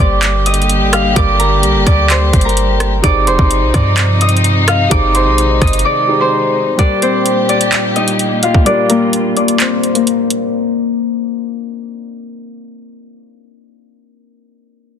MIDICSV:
0, 0, Header, 1, 6, 480
1, 0, Start_track
1, 0, Tempo, 468750
1, 1191, Time_signature, 4, 2, 24, 8
1, 15350, End_track
2, 0, Start_track
2, 0, Title_t, "Harp"
2, 0, Program_c, 0, 46
2, 0, Note_on_c, 0, 72, 69
2, 0, Note_on_c, 0, 84, 88
2, 0, Note_on_c, 0, 86, 83
2, 4, Note_on_c, 0, 74, 62
2, 473, Note_on_c, 0, 87, 77
2, 481, Note_on_c, 0, 75, 66
2, 534, Note_off_c, 0, 74, 0
2, 534, Note_off_c, 0, 86, 0
2, 848, Note_off_c, 0, 84, 0
2, 953, Note_on_c, 0, 89, 86
2, 961, Note_on_c, 0, 77, 62
2, 1192, Note_on_c, 0, 86, 112
2, 1200, Note_on_c, 0, 74, 84
2, 1253, Note_off_c, 0, 75, 0
2, 1253, Note_off_c, 0, 87, 0
2, 1427, Note_on_c, 0, 82, 85
2, 1436, Note_on_c, 0, 70, 63
2, 1545, Note_off_c, 0, 72, 0
2, 1906, Note_off_c, 0, 86, 0
2, 1910, Note_on_c, 0, 86, 76
2, 1914, Note_off_c, 0, 74, 0
2, 1918, Note_on_c, 0, 74, 67
2, 2077, Note_off_c, 0, 89, 0
2, 2152, Note_on_c, 0, 84, 90
2, 2160, Note_on_c, 0, 72, 66
2, 2504, Note_off_c, 0, 82, 0
2, 2508, Note_on_c, 0, 82, 68
2, 2513, Note_off_c, 0, 70, 0
2, 2517, Note_on_c, 0, 70, 49
2, 2665, Note_off_c, 0, 77, 0
2, 3104, Note_off_c, 0, 86, 0
2, 3108, Note_on_c, 0, 86, 105
2, 3112, Note_off_c, 0, 74, 0
2, 3116, Note_on_c, 0, 74, 78
2, 3346, Note_off_c, 0, 84, 0
2, 3350, Note_on_c, 0, 84, 93
2, 3354, Note_off_c, 0, 72, 0
2, 3358, Note_on_c, 0, 72, 69
2, 3828, Note_off_c, 0, 86, 0
2, 3832, Note_on_c, 0, 86, 79
2, 3836, Note_off_c, 0, 74, 0
2, 3840, Note_on_c, 0, 74, 66
2, 3942, Note_off_c, 0, 82, 0
2, 4317, Note_on_c, 0, 87, 76
2, 4325, Note_on_c, 0, 75, 67
2, 4378, Note_off_c, 0, 74, 0
2, 4378, Note_off_c, 0, 86, 0
2, 4688, Note_off_c, 0, 84, 0
2, 4689, Note_off_c, 0, 70, 0
2, 4791, Note_on_c, 0, 89, 84
2, 4800, Note_on_c, 0, 77, 70
2, 5030, Note_on_c, 0, 86, 109
2, 5038, Note_on_c, 0, 74, 90
2, 5092, Note_off_c, 0, 75, 0
2, 5092, Note_off_c, 0, 87, 0
2, 5271, Note_on_c, 0, 84, 81
2, 5274, Note_off_c, 0, 72, 0
2, 5279, Note_on_c, 0, 72, 60
2, 5751, Note_on_c, 0, 87, 78
2, 5759, Note_on_c, 0, 75, 60
2, 5812, Note_off_c, 0, 74, 0
2, 5812, Note_off_c, 0, 86, 0
2, 5916, Note_off_c, 0, 89, 0
2, 5991, Note_on_c, 0, 86, 91
2, 5999, Note_on_c, 0, 74, 64
2, 6052, Note_off_c, 0, 75, 0
2, 6052, Note_off_c, 0, 87, 0
2, 6351, Note_off_c, 0, 84, 0
2, 6355, Note_on_c, 0, 84, 68
2, 6359, Note_off_c, 0, 72, 0
2, 6363, Note_on_c, 0, 72, 60
2, 6504, Note_off_c, 0, 77, 0
2, 6947, Note_off_c, 0, 74, 0
2, 6952, Note_on_c, 0, 74, 111
2, 6960, Note_on_c, 0, 62, 81
2, 7187, Note_off_c, 0, 72, 0
2, 7191, Note_on_c, 0, 72, 88
2, 7199, Note_on_c, 0, 60, 67
2, 7238, Note_off_c, 0, 86, 0
2, 7667, Note_off_c, 0, 74, 0
2, 7671, Note_on_c, 0, 74, 84
2, 7675, Note_off_c, 0, 62, 0
2, 7679, Note_on_c, 0, 62, 56
2, 7692, Note_off_c, 0, 84, 0
2, 8152, Note_on_c, 0, 75, 86
2, 8160, Note_on_c, 0, 63, 60
2, 8214, Note_off_c, 0, 62, 0
2, 8214, Note_off_c, 0, 74, 0
2, 8634, Note_on_c, 0, 77, 81
2, 8642, Note_on_c, 0, 65, 66
2, 8869, Note_on_c, 0, 74, 107
2, 8877, Note_on_c, 0, 62, 85
2, 8930, Note_off_c, 0, 63, 0
2, 8930, Note_off_c, 0, 75, 0
2, 9109, Note_on_c, 0, 70, 84
2, 9117, Note_on_c, 0, 58, 63
2, 9218, Note_off_c, 0, 72, 0
2, 9586, Note_off_c, 0, 74, 0
2, 9591, Note_on_c, 0, 74, 80
2, 9595, Note_off_c, 0, 62, 0
2, 9599, Note_on_c, 0, 62, 58
2, 9830, Note_on_c, 0, 72, 89
2, 9835, Note_off_c, 0, 60, 0
2, 9839, Note_on_c, 0, 60, 60
2, 10183, Note_off_c, 0, 70, 0
2, 10187, Note_on_c, 0, 70, 67
2, 10190, Note_off_c, 0, 58, 0
2, 10195, Note_on_c, 0, 58, 56
2, 10338, Note_off_c, 0, 77, 0
2, 11225, Note_off_c, 0, 65, 0
2, 11482, Note_off_c, 0, 74, 0
2, 11857, Note_off_c, 0, 72, 0
2, 12359, Note_off_c, 0, 70, 0
2, 12465, Note_off_c, 0, 62, 0
2, 12911, Note_off_c, 0, 60, 0
2, 13487, Note_off_c, 0, 58, 0
2, 15350, End_track
3, 0, Start_track
3, 0, Title_t, "Grand piano"
3, 0, Program_c, 1, 0
3, 0, Control_c, 1, 64, 127
3, 0, Note_on_c, 1, 55, 65
3, 0, Note_on_c, 1, 67, 62
3, 0, Note_on_c, 1, 70, 65
3, 1145, Note_off_c, 1, 55, 0
3, 1150, Note_off_c, 1, 67, 0
3, 1156, Note_off_c, 1, 70, 0
3, 1176, Note_on_c, 1, 55, 71
3, 1187, Note_on_c, 1, 67, 61
3, 1198, Note_on_c, 1, 70, 63
3, 1209, Note_on_c, 1, 74, 72
3, 3065, Note_off_c, 1, 55, 0
3, 3070, Note_off_c, 1, 67, 0
3, 3076, Note_off_c, 1, 70, 0
3, 3082, Note_off_c, 1, 74, 0
3, 3095, Note_on_c, 1, 67, 65
3, 3106, Note_on_c, 1, 63, 59
3, 3117, Note_on_c, 1, 68, 62
3, 3123, Control_c, 1, 64, 0
3, 3128, Note_on_c, 1, 72, 73
3, 3326, Control_c, 1, 64, 127
3, 4985, Note_off_c, 1, 67, 0
3, 4990, Note_off_c, 1, 63, 0
3, 4995, Note_off_c, 1, 68, 0
3, 5001, Note_off_c, 1, 72, 0
3, 5014, Note_on_c, 1, 67, 63
3, 5025, Note_on_c, 1, 63, 61
3, 5036, Note_on_c, 1, 68, 64
3, 5046, Control_c, 1, 64, 0
3, 5047, Note_on_c, 1, 72, 76
3, 5249, Control_c, 1, 64, 127
3, 6198, Note_off_c, 1, 67, 0
3, 6204, Note_off_c, 1, 63, 0
3, 6209, Note_off_c, 1, 68, 0
3, 6215, Note_off_c, 1, 72, 0
3, 6223, Note_on_c, 1, 67, 51
3, 6228, Note_on_c, 1, 63, 50
3, 6233, Note_on_c, 1, 68, 50
3, 6239, Note_on_c, 1, 72, 56
3, 6930, Note_off_c, 1, 67, 0
3, 6934, Note_on_c, 1, 55, 66
3, 6945, Note_on_c, 1, 67, 58
3, 6949, Note_off_c, 1, 63, 0
3, 6952, Note_off_c, 1, 68, 0
3, 6955, Note_off_c, 1, 72, 0
3, 6956, Note_on_c, 1, 70, 59
3, 6966, Control_c, 1, 64, 0
3, 7169, Control_c, 1, 64, 127
3, 8824, Note_off_c, 1, 55, 0
3, 8829, Note_off_c, 1, 67, 0
3, 8835, Note_off_c, 1, 70, 0
3, 8853, Note_on_c, 1, 55, 62
3, 8864, Note_on_c, 1, 67, 59
3, 8875, Note_on_c, 1, 70, 58
3, 8886, Note_on_c, 1, 74, 74
3, 10743, Note_off_c, 1, 55, 0
3, 10749, Note_off_c, 1, 67, 0
3, 10754, Note_off_c, 1, 70, 0
3, 10760, Note_off_c, 1, 74, 0
3, 10805, Control_c, 1, 64, 0
3, 15350, End_track
4, 0, Start_track
4, 0, Title_t, "String section"
4, 0, Program_c, 2, 48
4, 0, Note_on_c, 2, 50, 86
4, 0, Note_on_c, 2, 55, 78
4, 0, Note_on_c, 2, 58, 76
4, 0, Note_on_c, 2, 67, 92
4, 3073, Note_off_c, 2, 50, 0
4, 3073, Note_off_c, 2, 55, 0
4, 3073, Note_off_c, 2, 58, 0
4, 3073, Note_off_c, 2, 67, 0
4, 3110, Note_on_c, 2, 53, 77
4, 3110, Note_on_c, 2, 60, 76
4, 3111, Note_on_c, 2, 48, 84
4, 3111, Note_on_c, 2, 63, 97
4, 5011, Note_off_c, 2, 53, 0
4, 5011, Note_off_c, 2, 60, 0
4, 5030, Note_on_c, 2, 51, 77
4, 5030, Note_on_c, 2, 56, 78
4, 6912, Note_off_c, 2, 48, 0
4, 6912, Note_off_c, 2, 63, 0
4, 6931, Note_off_c, 2, 51, 0
4, 6931, Note_off_c, 2, 56, 0
4, 6949, Note_on_c, 2, 46, 79
4, 6949, Note_on_c, 2, 58, 76
4, 6950, Note_on_c, 2, 55, 71
4, 6950, Note_on_c, 2, 67, 88
4, 8851, Note_off_c, 2, 67, 0
4, 8870, Note_on_c, 2, 65, 86
4, 10751, Note_off_c, 2, 46, 0
4, 10752, Note_off_c, 2, 55, 0
4, 10752, Note_off_c, 2, 58, 0
4, 10771, Note_off_c, 2, 65, 0
4, 15350, End_track
5, 0, Start_track
5, 0, Title_t, "808-style bass"
5, 0, Program_c, 3, 38
5, 0, Note_on_c, 3, 31, 109
5, 830, Note_on_c, 3, 32, 101
5, 846, Note_off_c, 3, 31, 0
5, 1173, Note_off_c, 3, 32, 0
5, 1191, Note_on_c, 3, 31, 107
5, 1671, Note_on_c, 3, 34, 99
5, 1686, Note_off_c, 3, 31, 0
5, 1790, Note_on_c, 3, 31, 99
5, 1805, Note_off_c, 3, 34, 0
5, 1904, Note_off_c, 3, 31, 0
5, 1910, Note_on_c, 3, 38, 109
5, 2371, Note_off_c, 3, 38, 0
5, 2390, Note_on_c, 3, 31, 111
5, 3081, Note_off_c, 3, 31, 0
5, 3111, Note_on_c, 3, 31, 110
5, 3351, Note_on_c, 3, 29, 100
5, 3366, Note_off_c, 3, 31, 0
5, 3465, Note_off_c, 3, 29, 0
5, 3469, Note_on_c, 3, 31, 106
5, 3710, Note_on_c, 3, 34, 101
5, 3726, Note_off_c, 3, 31, 0
5, 3824, Note_off_c, 3, 34, 0
5, 3830, Note_on_c, 3, 43, 111
5, 4989, Note_off_c, 3, 43, 0
5, 5030, Note_on_c, 3, 31, 108
5, 5391, Note_on_c, 3, 34, 102
5, 5406, Note_off_c, 3, 31, 0
5, 5733, Note_off_c, 3, 34, 0
5, 5751, Note_on_c, 3, 31, 109
5, 5981, Note_off_c, 3, 31, 0
5, 15350, End_track
6, 0, Start_track
6, 0, Title_t, "Drums"
6, 231, Note_on_c, 9, 39, 120
6, 231, Note_on_c, 9, 42, 86
6, 333, Note_off_c, 9, 39, 0
6, 333, Note_off_c, 9, 42, 0
6, 471, Note_on_c, 9, 42, 82
6, 551, Note_off_c, 9, 42, 0
6, 551, Note_on_c, 9, 42, 66
6, 631, Note_off_c, 9, 42, 0
6, 631, Note_on_c, 9, 42, 48
6, 711, Note_off_c, 9, 42, 0
6, 711, Note_on_c, 9, 42, 73
6, 814, Note_off_c, 9, 42, 0
6, 951, Note_on_c, 9, 37, 104
6, 951, Note_on_c, 9, 42, 84
6, 1053, Note_off_c, 9, 37, 0
6, 1054, Note_off_c, 9, 42, 0
6, 1191, Note_on_c, 9, 36, 116
6, 1191, Note_on_c, 9, 42, 89
6, 1293, Note_off_c, 9, 36, 0
6, 1293, Note_off_c, 9, 42, 0
6, 1431, Note_on_c, 9, 42, 79
6, 1533, Note_off_c, 9, 42, 0
6, 1671, Note_on_c, 9, 42, 82
6, 1773, Note_off_c, 9, 42, 0
6, 1910, Note_on_c, 9, 36, 92
6, 1910, Note_on_c, 9, 37, 64
6, 1911, Note_on_c, 9, 42, 79
6, 2013, Note_off_c, 9, 36, 0
6, 2013, Note_off_c, 9, 37, 0
6, 2013, Note_off_c, 9, 42, 0
6, 2150, Note_on_c, 9, 39, 121
6, 2151, Note_on_c, 9, 42, 86
6, 2253, Note_off_c, 9, 39, 0
6, 2253, Note_off_c, 9, 42, 0
6, 2390, Note_on_c, 9, 36, 107
6, 2390, Note_on_c, 9, 42, 81
6, 2471, Note_off_c, 9, 42, 0
6, 2471, Note_on_c, 9, 42, 63
6, 2492, Note_off_c, 9, 36, 0
6, 2551, Note_off_c, 9, 42, 0
6, 2551, Note_on_c, 9, 42, 47
6, 2631, Note_off_c, 9, 42, 0
6, 2631, Note_on_c, 9, 42, 70
6, 2733, Note_off_c, 9, 42, 0
6, 2870, Note_on_c, 9, 37, 107
6, 2870, Note_on_c, 9, 42, 83
6, 2972, Note_off_c, 9, 37, 0
6, 2973, Note_off_c, 9, 42, 0
6, 3110, Note_on_c, 9, 36, 112
6, 3110, Note_on_c, 9, 42, 89
6, 3212, Note_off_c, 9, 42, 0
6, 3213, Note_off_c, 9, 36, 0
6, 3350, Note_on_c, 9, 42, 78
6, 3453, Note_off_c, 9, 42, 0
6, 3469, Note_on_c, 9, 36, 97
6, 3572, Note_off_c, 9, 36, 0
6, 3590, Note_on_c, 9, 42, 81
6, 3693, Note_off_c, 9, 42, 0
6, 3830, Note_on_c, 9, 36, 96
6, 3830, Note_on_c, 9, 37, 67
6, 3830, Note_on_c, 9, 42, 78
6, 3932, Note_off_c, 9, 37, 0
6, 3932, Note_off_c, 9, 42, 0
6, 3933, Note_off_c, 9, 36, 0
6, 4069, Note_on_c, 9, 39, 119
6, 4070, Note_on_c, 9, 42, 84
6, 4172, Note_off_c, 9, 39, 0
6, 4172, Note_off_c, 9, 42, 0
6, 4310, Note_on_c, 9, 42, 81
6, 4390, Note_off_c, 9, 42, 0
6, 4390, Note_on_c, 9, 42, 64
6, 4470, Note_off_c, 9, 42, 0
6, 4470, Note_on_c, 9, 42, 47
6, 4550, Note_off_c, 9, 42, 0
6, 4550, Note_on_c, 9, 42, 70
6, 4652, Note_off_c, 9, 42, 0
6, 4789, Note_on_c, 9, 37, 105
6, 4790, Note_on_c, 9, 42, 83
6, 4891, Note_off_c, 9, 37, 0
6, 4892, Note_off_c, 9, 42, 0
6, 5030, Note_on_c, 9, 42, 91
6, 5031, Note_on_c, 9, 36, 117
6, 5132, Note_off_c, 9, 42, 0
6, 5133, Note_off_c, 9, 36, 0
6, 5271, Note_on_c, 9, 42, 79
6, 5373, Note_off_c, 9, 42, 0
6, 5511, Note_on_c, 9, 42, 82
6, 5613, Note_off_c, 9, 42, 0
6, 5751, Note_on_c, 9, 36, 94
6, 5751, Note_on_c, 9, 37, 69
6, 5751, Note_on_c, 9, 42, 49
6, 5811, Note_off_c, 9, 42, 0
6, 5811, Note_on_c, 9, 42, 57
6, 5853, Note_off_c, 9, 36, 0
6, 5853, Note_off_c, 9, 37, 0
6, 5870, Note_off_c, 9, 42, 0
6, 5870, Note_on_c, 9, 42, 67
6, 5930, Note_off_c, 9, 42, 0
6, 5930, Note_on_c, 9, 42, 77
6, 6033, Note_off_c, 9, 42, 0
6, 6951, Note_on_c, 9, 36, 109
6, 6951, Note_on_c, 9, 42, 83
6, 7053, Note_off_c, 9, 36, 0
6, 7053, Note_off_c, 9, 42, 0
6, 7191, Note_on_c, 9, 42, 75
6, 7293, Note_off_c, 9, 42, 0
6, 7430, Note_on_c, 9, 42, 79
6, 7533, Note_off_c, 9, 42, 0
6, 7671, Note_on_c, 9, 42, 46
6, 7773, Note_off_c, 9, 42, 0
6, 7790, Note_on_c, 9, 42, 77
6, 7893, Note_off_c, 9, 42, 0
6, 7910, Note_on_c, 9, 39, 117
6, 7910, Note_on_c, 9, 42, 80
6, 8012, Note_off_c, 9, 39, 0
6, 8012, Note_off_c, 9, 42, 0
6, 8150, Note_on_c, 9, 42, 47
6, 8253, Note_off_c, 9, 42, 0
6, 8270, Note_on_c, 9, 42, 78
6, 8373, Note_off_c, 9, 42, 0
6, 8390, Note_on_c, 9, 42, 69
6, 8492, Note_off_c, 9, 42, 0
6, 8629, Note_on_c, 9, 42, 81
6, 8732, Note_off_c, 9, 42, 0
6, 8750, Note_on_c, 9, 36, 90
6, 8852, Note_off_c, 9, 36, 0
6, 8869, Note_on_c, 9, 42, 83
6, 8971, Note_off_c, 9, 42, 0
6, 9110, Note_on_c, 9, 42, 77
6, 9212, Note_off_c, 9, 42, 0
6, 9350, Note_on_c, 9, 42, 77
6, 9452, Note_off_c, 9, 42, 0
6, 9590, Note_on_c, 9, 42, 45
6, 9693, Note_off_c, 9, 42, 0
6, 9710, Note_on_c, 9, 42, 73
6, 9813, Note_off_c, 9, 42, 0
6, 9830, Note_on_c, 9, 39, 116
6, 9831, Note_on_c, 9, 42, 81
6, 9933, Note_off_c, 9, 39, 0
6, 9933, Note_off_c, 9, 42, 0
6, 10071, Note_on_c, 9, 42, 46
6, 10173, Note_off_c, 9, 42, 0
6, 10191, Note_on_c, 9, 42, 76
6, 10293, Note_off_c, 9, 42, 0
6, 10311, Note_on_c, 9, 42, 68
6, 10414, Note_off_c, 9, 42, 0
6, 10552, Note_on_c, 9, 42, 78
6, 10654, Note_off_c, 9, 42, 0
6, 15350, End_track
0, 0, End_of_file